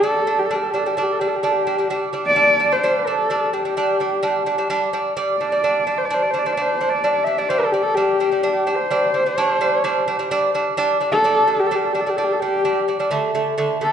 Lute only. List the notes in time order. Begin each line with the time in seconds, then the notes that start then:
0.03 G3 D4
0.27 G3 D4
0.51 G3 D4
0.74 G3 D4
0.86 G3 D4
0.97 G3 D4
1.21 G3 D4
1.43 G3 D4
1.67 G3 D4
1.78 G3 D4
1.90 G3 D4
2.13 G3 D4
2.36 G3 D4
2.60 G3 D4
2.72 G3 D4
2.83 G3 D4
3.07 G3 D4
3.30 G3 D4
3.53 G3 D4
3.65 G3 D4
3.77 G3 D4
4.00 G3 D4
4.23 G3 D4
4.46 G3 D4
4.58 G3 D4
4.70 G3 D4
4.93 G3 D4
5.17 G3 D4
5.41 G3 D4
5.52 G3 D4
5.64 G3 D4
5.87 G3 D4
6.10 G3 D4
6.33 G3 D4
6.46 G3 D4
6.57 G3 D4
6.81 G3 D4
7.04 G3 D4
7.26 G3 D4
7.38 G3 D4
7.50 G3 D4
7.74 G3 D4
7.97 G3 D4
8.20 G3 D4
8.32 G3 D4
8.43 G3 D4
8.67 G3 D4
8.91 G3 D4
9.14 G3 D4
9.26 G3 D4
9.38 G3 D4
9.61 G3 D4
9.84 G3 D4
10.08 G3 D4
10.19 G3 D4
10.31 G3 D4
10.55 G3 D4
10.77 G3 D4
11.00 G3 D4
11.13 G3 D4
11.24 G3 D4
11.47 G3 D4
11.71 G3 D4
11.95 G3 D4
12.06 G3 D4
12.18 G3 D4
12.42 G3 D4
12.65 G3 D4
12.88 G3 D4
12.99 G3 D4
13.11 D3 A3
13.35 D3 A3
13.58 D3 A3
13.81 D3 A3